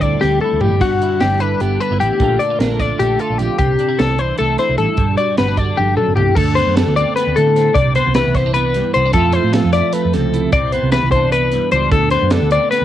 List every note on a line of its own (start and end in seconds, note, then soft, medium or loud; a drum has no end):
0.00 0.15 D2 medium
0.00 0.82 D2 medium
0.00 1.40 D3 medium
0.00 0.22 G3 medium
0.00 0.80 C4 medium
0.00 0.42 E4 medium
0.00 0.21 D5 medium
0.00 kick medium
0.00 closed hi-hat medium
0.21 0.38 D2 medium
0.21 1.61 G3 medium
0.21 0.41 G4 medium
0.21 snare medium
0.40 0.80 E4 medium
0.40 0.61 A4 medium
0.40 mid tom medium
0.53 0.60 D2 medium
0.61 0.70 A1 medium
0.61 0.80 A2 medium
0.61 0.81 G4 medium
0.61 floor tom medium
0.81 0.97 G1 medium
0.81 2.01 G2 medium
0.81 1.21 F#4 medium
0.81 kick loud
0.81 closed hi-hat medium
0.81 crash medium
1.02 1.81 E4 medium
1.02 closed hi-hat medium
1.21 1.53 G1 medium
1.21 1.81 D4 medium
1.21 1.40 G4 medium
1.21 snare loud
1.21 closed hi-hat medium
1.40 2.19 D3 medium
1.40 1.61 B4 medium
1.40 closed hi-hat medium
1.60 1.77 G1 medium
1.60 2.18 B3 medium
1.60 1.80 G4 medium
1.60 closed hi-hat medium
1.80 1.92 D4 medium
1.80 2.00 B4 medium
1.80 closed hi-hat medium
1.91 1.99 G1 medium
1.91 2.21 E4 soft
2.00 2.09 A1 medium
2.00 2.21 D2 medium
2.00 2.40 G4 medium
2.00 closed hi-hat medium
2.20 2.36 A#1 medium
2.20 2.80 A#2 medium
2.20 2.79 D3 medium
2.20 3.00 A3 medium
2.20 2.40 D4 medium
2.20 2.40 F4 medium
2.20 kick loud
2.20 closed hi-hat medium
2.39 2.50 D4 medium
2.39 2.59 D5 medium
2.39 closed hi-hat medium
2.50 3.20 F4 soft
2.59 2.91 A#1 loud
2.59 3.63 D4 medium
2.59 2.80 A#4 medium
2.59 snare loud
2.59 closed hi-hat medium
2.80 4.19 D3 medium
2.80 3.00 D5 medium
2.80 kick medium
2.80 snare soft
2.80 closed hi-hat medium
2.99 3.15 A#1 medium
2.99 3.58 A3 medium
2.99 3.20 G4 medium
2.99 closed hi-hat medium
3.19 3.58 F4 medium
3.19 3.38 A4 medium
3.19 closed hi-hat medium
3.30 3.38 A#1 medium
3.38 3.48 A#1 medium
3.38 3.57 F2 medium
3.38 3.57 G4 medium
3.38 closed hi-hat medium
3.58 3.75 C2 medium
3.58 4.19 C3 medium
3.58 3.99 G4 medium
3.58 kick loud
3.58 closed hi-hat medium
3.79 3.89 D4 medium
3.79 closed hi-hat medium
3.89 4.58 E4 soft
3.99 4.31 C2 medium
3.99 5.39 D4 medium
3.99 4.19 A4 medium
3.99 snare loud
3.99 closed hi-hat medium
4.18 4.97 E3 medium
4.18 4.38 C5 medium
4.18 closed hi-hat medium
4.38 4.55 C2 loud
4.38 4.96 A3 medium
4.38 4.59 A4 medium
4.38 closed hi-hat medium
4.58 4.96 E4 medium
4.58 4.78 C5 medium
4.58 snare soft
4.58 closed hi-hat medium
4.69 4.77 C2 medium
4.78 4.87 A1 medium
4.78 4.96 G2 medium
4.78 5.17 A4 medium
4.78 closed hi-hat medium
4.97 5.14 G1 medium
4.97 5.76 G2 medium
4.97 kick loud
4.97 closed hi-hat medium
5.17 6.35 F#4 medium
5.17 5.38 D5 medium
5.17 closed hi-hat medium
5.37 5.70 G1 medium
5.37 5.48 B3 medium
5.37 5.57 B4 medium
5.37 snare loud
5.37 closed hi-hat medium
5.48 6.37 D4 soft
5.57 6.76 D3 medium
5.57 5.78 D5 medium
5.57 kick medium
5.57 closed hi-hat medium
5.77 5.94 G1 medium
5.77 5.97 G2 medium
5.77 5.97 G4 medium
5.77 high tom medium
5.97 6.16 F#2 medium
5.97 6.15 A4 medium
5.97 mid tom medium
6.08 6.16 G1 medium
6.16 6.26 C2 medium
6.16 6.36 E2 medium
6.16 6.35 G4 medium
6.16 floor tom medium
6.35 6.60 D2 loud
6.35 7.76 D2 medium
6.35 6.56 A4 loud
6.35 kick loud
6.35 crash loud
6.55 7.17 B3 medium
6.55 6.76 C5 medium
6.55 snare soft
6.55 closed hi-hat medium
6.67 6.83 F#2 medium
6.76 8.16 D3 medium
6.76 6.96 A4 medium
6.76 snare loud
6.76 closed hi-hat medium
6.88 7.03 D2 medium
6.96 7.56 C4 medium
6.96 7.16 D5 medium
6.96 closed hi-hat medium
7.16 7.75 B3 medium
7.16 7.36 B4 medium
7.16 snare soft
7.16 closed hi-hat loud
7.27 7.35 D2 medium
7.36 7.74 A2 medium
7.36 7.69 D3 medium
7.36 7.76 A4 medium
7.36 closed hi-hat medium
7.56 7.99 C4 medium
7.56 snare soft
7.56 closed hi-hat medium
7.75 8.00 C2 medium
7.75 8.16 C3 medium
7.75 7.95 D5 medium
7.75 kick loud
7.75 closed hi-hat medium
7.95 8.35 B3 medium
7.95 8.15 C5 medium
7.95 closed hi-hat medium
8.07 8.22 C2 medium
8.15 9.14 E3 medium
8.15 8.35 B4 medium
8.15 snare loud
8.15 closed hi-hat loud
8.27 8.81 C2 medium
8.35 8.46 B3 medium
8.35 8.54 C5 medium
8.35 kick medium
8.35 snare soft
8.35 closed hi-hat medium
8.46 8.95 D4 soft
8.54 8.94 B3 medium
8.54 8.94 B4 medium
8.54 closed hi-hat medium
8.74 9.13 G2 medium
8.74 snare soft
8.74 closed hi-hat medium
8.94 9.11 C2 medium
8.94 9.06 B3 medium
8.94 9.13 C5 medium
8.94 closed hi-hat medium
9.06 9.15 D4 medium
9.13 9.38 F2 loud
9.13 10.51 F2 medium
9.13 9.53 F3 medium
9.13 9.35 A3 medium
9.13 9.74 E4 medium
9.13 9.33 A4 medium
9.13 kick loud
9.13 closed hi-hat loud
9.18 10.53 F4 medium
9.32 9.92 A3 medium
9.32 9.53 C5 medium
9.32 closed hi-hat medium
9.44 9.60 A2 medium
9.53 10.51 F3 medium
9.53 9.72 A4 medium
9.53 snare loud
9.53 closed hi-hat loud
9.64 9.80 F2 medium
9.73 10.33 E4 medium
9.73 9.93 D5 medium
9.73 snare soft
9.73 closed hi-hat medium
9.92 10.51 A3 medium
9.92 10.13 B4 medium
9.92 closed hi-hat loud
10.05 10.12 F2 medium
10.13 10.46 C#2 medium
10.13 10.51 C3 medium
10.13 10.52 A4 medium
10.13 snare soft
10.13 closed hi-hat medium
10.33 11.15 E4 medium
10.33 closed hi-hat medium
10.52 10.77 C2 medium
10.52 10.93 C3 medium
10.52 10.72 D5 loud
10.52 kick loud
10.52 closed hi-hat medium
10.72 11.33 B3 medium
10.72 10.92 C5 medium
10.72 closed hi-hat medium
10.83 10.99 C2 medium
10.92 11.97 E3 medium
10.92 11.11 B4 medium
10.92 snare loud
10.92 closed hi-hat loud
11.03 11.58 C2 medium
11.12 11.74 D4 medium
11.12 11.32 C5 medium
11.12 kick medium
11.12 closed hi-hat medium
11.32 12.13 B3 medium
11.32 11.72 B4 medium
11.32 closed hi-hat medium
11.52 11.90 G2 medium
11.52 snare soft
11.52 closed hi-hat medium
11.72 11.88 C#2 medium
11.72 12.53 D4 medium
11.72 11.92 C5 medium
11.72 closed hi-hat medium
11.92 12.16 D2 loud
11.92 12.85 D2 medium
11.92 12.11 A4 medium
11.92 kick loud
11.92 closed hi-hat medium
12.10 12.71 B3 medium
12.10 12.32 C5 medium
12.10 snare soft
12.10 closed hi-hat medium
12.22 12.38 F#2 medium
12.30 12.85 D3 medium
12.30 12.52 A4 medium
12.30 snare loud
12.30 closed hi-hat loud
12.42 12.58 D2 medium
12.51 12.85 C4 medium
12.51 12.70 D5 medium
12.51 closed hi-hat medium
12.71 12.85 B3 medium
12.71 12.85 B4 medium
12.71 snare soft
12.71 closed hi-hat medium
12.82 12.85 D2 medium